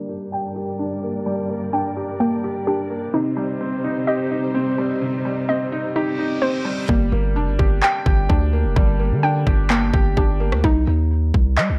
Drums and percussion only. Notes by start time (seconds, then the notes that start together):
6.89 kick
7.59 kick
7.83 clap
8.06 kick
8.30 kick
8.76 kick
9.47 kick, cross-stick
9.70 clap
9.94 kick
10.17 kick
10.52 cross-stick
10.64 kick
11.34 kick
11.58 clap